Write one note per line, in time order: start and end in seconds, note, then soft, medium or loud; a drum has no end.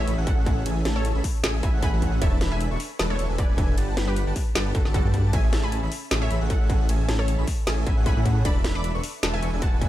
0.00 0.19 C#5 medium
0.00 0.19 E5 loud
0.07 0.16 A1 loud
0.07 0.15 C#4 loud
0.07 0.15 G#4 medium
0.07 0.15 A4 loud
0.07 0.15 E5 medium
0.07 0.15 B5 loud
0.07 closed hi-hat medium
0.18 0.35 A1 loud
0.18 0.35 C#4 medium
0.18 0.35 G#4 medium
0.18 0.35 A4 medium
0.18 0.35 E5 medium
0.18 0.35 F#5 loud
0.27 0.48 A4 medium
0.27 0.48 F#5 loud
0.27 kick loud
0.27 closed hi-hat medium
0.37 0.64 A1 loud
0.37 0.64 C#4 medium
0.37 0.64 G#4 medium
0.37 0.64 A4 medium
0.37 0.64 E5 medium
0.37 0.64 F#5 medium
0.46 kick loud
0.46 closed hi-hat medium
0.66 0.83 A1 loud
0.66 0.83 C#4 medium
0.66 0.83 G#4 medium
0.66 0.83 A4 medium
0.66 0.83 E5 medium
0.66 0.83 G#5 loud
0.66 closed hi-hat medium
0.66 ride soft
0.85 1.13 A1 loud
0.85 1.13 C#4 medium
0.85 1.13 G#4 medium
0.85 1.13 A4 medium
0.85 1.13 E5 medium
0.85 1.13 A5 loud
0.85 snare medium
0.85 closed hi-hat medium
0.96 1.17 A4 medium
0.96 1.16 C#5 medium
1.05 closed hi-hat medium
1.15 1.21 A1 loud
1.15 1.23 C#4 loud
1.15 1.23 G#4 medium
1.15 1.23 A4 medium
1.15 1.23 E5 medium
1.15 1.23 B5 loud
1.24 kick medium
1.24 open hi-hat loud
1.43 1.61 A1 loud
1.43 1.61 C#4 loud
1.43 1.61 G#4 medium
1.43 1.61 A4 medium
1.43 1.61 E5 medium
1.43 1.61 G#5 loud
1.43 snare loud
1.43 closed hi-hat medium
1.43 ride soft
1.63 1.72 A1 loud
1.63 1.71 C#4 loud
1.63 1.71 E5 loud
1.63 1.78 E5 medium
1.63 1.78 G#5 medium
1.63 1.71 B5 loud
1.63 kick loud
1.63 closed hi-hat medium
1.73 1.91 A1 loud
1.73 1.91 C#4 medium
1.73 1.91 G#4 medium
1.73 1.91 A4 medium
1.73 1.91 E5 medium
1.73 1.91 F#5 loud
1.83 2.11 G#5 medium
1.83 2.11 B5 loud
1.83 kick loud
1.83 closed hi-hat medium
1.93 2.20 A1 medium
1.93 2.20 C#4 medium
1.93 2.20 G#4 medium
1.93 2.19 A4 medium
1.93 2.20 E5 medium
1.93 2.20 F#5 medium
2.02 kick medium
2.02 closed hi-hat medium
2.22 2.39 E1 loud
2.22 2.39 D4 medium
2.22 2.39 A4 medium
2.22 2.39 B4 medium
2.22 2.43 C#5 medium
2.22 2.39 E5 medium
2.22 2.43 E5 loud
2.22 2.39 A5 loud
2.22 kick loud
2.22 closed hi-hat medium
2.22 ride soft
2.41 2.69 E1 loud
2.41 2.69 D4 medium
2.41 2.69 A4 medium
2.41 2.69 B4 medium
2.41 2.69 E5 medium
2.41 2.69 B5 loud
2.41 snare medium
2.41 closed hi-hat medium
2.52 2.72 E5 medium
2.52 2.72 G#5 medium
2.61 closed hi-hat medium
2.71 2.77 E1 loud
2.71 2.79 D4 loud
2.71 2.79 A4 medium
2.71 2.79 B4 medium
2.71 2.79 E5 medium
2.71 2.79 C#6 loud
2.80 open hi-hat loud
2.99 3.17 E1 loud
2.99 3.17 D4 medium
2.99 3.17 A4 medium
2.99 3.17 B4 medium
2.99 3.17 E5 medium
2.99 3.17 A5 loud
2.99 snare loud
2.99 closed hi-hat medium
2.99 ride soft
3.10 3.31 A4 medium
3.10 3.31 C#5 loud
3.19 3.27 E1 loud
3.19 3.27 D4 loud
3.19 3.27 A4 medium
3.19 3.27 B4 medium
3.19 3.27 E5 medium
3.19 3.27 C#6 loud
3.19 closed hi-hat medium
3.29 3.47 E1 loud
3.29 3.46 D4 loud
3.29 3.46 A4 medium
3.29 3.46 B4 medium
3.29 3.47 E5 medium
3.29 3.46 G#5 loud
3.29 3.47 G#5 loud
3.38 3.60 B4 medium
3.38 3.59 D5 loud
3.38 kick loud
3.38 closed hi-hat medium
3.49 3.76 E1 loud
3.49 3.75 D4 medium
3.49 3.75 A4 medium
3.49 3.75 B4 medium
3.49 3.75 E5 medium
3.49 3.75 G#5 medium
3.58 kick loud
3.58 closed hi-hat medium
3.77 3.95 G1 loud
3.77 3.95 D4 medium
3.77 3.95 G4 medium
3.77 3.95 B4 medium
3.77 3.95 F#5 medium
3.77 3.95 A5 loud
3.77 closed hi-hat medium
3.77 ride medium
3.97 4.25 G1 loud
3.97 4.25 D4 medium
3.97 4.25 G4 medium
3.97 4.25 B4 medium
3.97 4.25 F#5 medium
3.97 4.24 B5 loud
3.97 4.25 B5 medium
3.97 snare medium
3.97 closed hi-hat medium
4.08 4.28 G4 medium
4.08 4.28 B4 medium
4.16 closed hi-hat medium
4.27 4.33 G1 loud
4.27 4.35 D4 loud
4.27 4.35 G4 medium
4.27 4.35 B4 medium
4.27 4.35 F#5 medium
4.27 4.35 A5 loud
4.36 kick medium
4.36 open hi-hat medium
4.55 4.73 G1 loud
4.55 4.73 D4 medium
4.55 4.73 G4 medium
4.55 4.73 B4 medium
4.55 4.73 F#5 medium
4.55 4.73 A5 loud
4.55 snare loud
4.55 closed hi-hat medium
4.55 ride soft
4.75 4.83 G1 medium
4.75 4.89 F#4 medium
4.75 4.89 A4 medium
4.75 4.83 A5 loud
4.75 kick loud
4.75 closed hi-hat medium
4.85 5.03 G1 loud
4.85 5.02 D4 medium
4.85 5.02 G4 medium
4.85 5.02 B4 medium
4.85 5.02 F#5 medium
4.85 5.02 A5 loud
4.85 snare soft
4.94 5.23 F#4 medium
4.94 5.23 A4 loud
4.94 kick loud
4.94 closed hi-hat medium
5.05 5.31 G2 loud
5.05 5.31 D4 medium
5.05 5.31 G4 medium
5.05 5.31 B4 medium
5.05 5.31 F#5 medium
5.05 5.31 A5 medium
5.14 kick medium
5.14 closed hi-hat medium
5.33 5.51 A1 loud
5.33 5.51 C#4 medium
5.33 5.51 G#4 medium
5.33 5.51 A4 medium
5.33 5.51 E5 medium
5.33 5.54 E5 medium
5.33 5.51 G#5 medium
5.33 5.51 G#5 loud
5.33 5.54 G#5 loud
5.33 kick loud
5.33 closed hi-hat medium
5.33 ride medium
5.53 5.81 A1 loud
5.53 5.80 C#4 medium
5.53 5.80 G#4 medium
5.53 5.80 A4 medium
5.53 5.80 E5 medium
5.53 5.80 A5 loud
5.53 snare medium
5.53 closed hi-hat medium
5.63 5.84 G#5 medium
5.63 5.84 B5 loud
5.72 closed hi-hat medium
5.83 5.88 A1 loud
5.83 5.90 C#4 medium
5.83 5.90 G#4 medium
5.83 5.90 A4 medium
5.83 5.90 E5 medium
5.83 5.90 B5 loud
5.92 open hi-hat medium
6.11 6.29 A1 loud
6.11 6.29 C#4 medium
6.11 6.29 G#4 medium
6.11 6.29 A4 medium
6.11 6.29 E5 medium
6.11 6.29 G#5 loud
6.11 snare loud
6.11 closed hi-hat medium
6.11 ride soft
6.22 6.42 C#5 medium
6.22 6.42 E5 loud
6.31 6.39 A1 loud
6.31 6.39 C#4 loud
6.31 6.39 G#4 medium
6.31 6.39 A4 medium
6.31 6.39 E5 medium
6.31 6.39 B5 loud
6.31 closed hi-hat medium
6.41 6.59 A1 loud
6.41 6.58 C#4 medium
6.41 6.58 G#4 medium
6.41 6.58 A4 medium
6.41 6.58 E5 medium
6.41 6.58 F#5 loud
6.50 6.71 A4 medium
6.50 6.71 F#5 loud
6.50 kick loud
6.50 closed hi-hat medium
6.61 6.87 A1 loud
6.61 6.87 C#4 medium
6.61 6.87 G#4 medium
6.61 6.87 A4 medium
6.61 6.87 E5 medium
6.61 6.87 F#5 medium
6.70 kick loud
6.70 closed hi-hat medium
6.89 7.07 A1 loud
6.89 7.06 C#4 medium
6.89 7.06 G#4 medium
6.89 7.06 A4 medium
6.89 7.06 E5 medium
6.89 7.06 G#5 loud
6.89 closed hi-hat medium
6.89 ride medium
7.09 7.37 A1 loud
7.09 7.36 C#4 medium
7.09 7.36 G#4 medium
7.09 7.36 A4 medium
7.09 7.36 E5 medium
7.09 7.36 A5 medium
7.09 7.36 A5 loud
7.09 snare medium
7.09 closed hi-hat medium
7.19 7.40 A4 medium
7.19 7.40 C#5 loud
7.28 closed hi-hat medium
7.39 7.44 A1 loud
7.39 7.46 C#4 loud
7.39 7.46 G#4 medium
7.39 7.46 A4 medium
7.39 7.46 E5 medium
7.39 7.46 B5 loud
7.48 kick medium
7.48 open hi-hat loud
7.67 7.85 A1 loud
7.67 7.85 C#4 medium
7.67 7.85 G#4 medium
7.67 7.85 A4 medium
7.67 7.85 E5 medium
7.67 7.85 G#5 loud
7.67 snare loud
7.67 closed hi-hat medium
7.67 ride soft
7.87 7.95 A1 loud
7.87 7.95 C#4 loud
7.87 7.95 G#4 medium
7.87 7.95 A4 medium
7.87 8.01 E5 medium
7.87 7.95 E5 medium
7.87 8.01 G#5 medium
7.87 7.95 B5 loud
7.87 kick loud
7.87 closed hi-hat medium
7.97 8.15 A1 loud
7.97 8.14 C#4 medium
7.97 8.14 G#4 medium
7.97 8.14 A4 medium
7.97 8.14 E5 medium
7.97 8.14 F#5 loud
8.06 8.35 G#5 medium
8.06 8.35 B5 loud
8.06 kick loud
8.06 closed hi-hat medium
8.17 8.43 A2 loud
8.17 8.43 C#4 medium
8.17 8.43 G#4 medium
8.17 8.43 A4 medium
8.17 8.43 E5 medium
8.17 8.43 F#5 medium
8.26 kick medium
8.26 closed hi-hat medium
8.45 8.63 E1 loud
8.45 8.62 D4 medium
8.45 8.62 A4 medium
8.45 8.62 B4 medium
8.45 8.66 D5 medium
8.45 8.62 E5 medium
8.45 8.62 A5 medium
8.45 8.62 A5 loud
8.45 8.66 B5 loud
8.45 kick loud
8.45 closed hi-hat medium
8.45 ride soft
8.64 8.92 E1 loud
8.64 8.92 D4 medium
8.64 8.92 A4 medium
8.64 8.92 B4 medium
8.64 8.92 E5 medium
8.64 8.92 B5 loud
8.64 snare medium
8.64 closed hi-hat medium
8.75 8.96 B5 medium
8.75 8.96 D6 loud
8.84 closed hi-hat medium
8.94 9.00 E1 loud
8.94 9.02 D4 loud
8.94 9.02 A4 medium
8.94 9.02 B4 medium
8.94 9.02 E5 medium
8.94 9.02 C#6 loud
9.04 open hi-hat loud
9.23 9.41 E1 loud
9.23 9.41 D4 medium
9.23 9.41 A4 medium
9.23 9.41 B4 medium
9.23 9.41 E5 medium
9.23 9.41 A5 loud
9.23 snare loud
9.23 closed hi-hat medium
9.23 ride soft
9.34 9.54 E5 medium
9.34 9.54 G#5 loud
9.42 9.51 E1 medium
9.42 9.51 D4 loud
9.42 9.51 A4 medium
9.42 9.51 B4 medium
9.42 9.51 E5 medium
9.42 9.50 C#6 loud
9.42 9.51 C#6 loud
9.42 closed hi-hat medium
9.53 9.70 E1 loud
9.53 9.70 D4 loud
9.53 9.70 A4 medium
9.53 9.70 B4 medium
9.53 9.70 E5 medium
9.53 9.70 G#5 loud
9.62 9.83 F#5 medium
9.62 9.83 A5 loud
9.62 kick loud
9.62 closed hi-hat medium
9.72 9.89 E1 loud
9.72 9.89 D4 medium
9.72 9.89 A4 medium
9.72 9.89 B4 medium
9.72 9.89 E5 medium
9.72 9.89 G#5 medium
9.82 kick loud
9.82 closed hi-hat medium